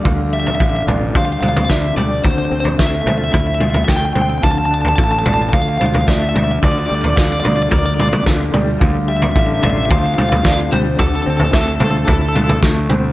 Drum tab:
SD |------------o---|----o-------o---|------------o---|----o-------o---|
T2 |------o---oo--o-|------o---oo--o-|------o---oo--o-|------o---oo--o-|
FT |o--o--o-o--o----|o--o--o-o--o----|o--o--o-o--o----|o--o--o-o--o----|
BD |o---o---o---o---|o---o---o---o---|o---o---o---o---|o---o---o---o---|

SD |------------o---|----o-------o---|
T2 |------o---oo--o-|------o---oo--o-|
FT |o--o--o-o--o----|o--o--o-o--o----|
BD |o---o---o---o---|o---o---o---o---|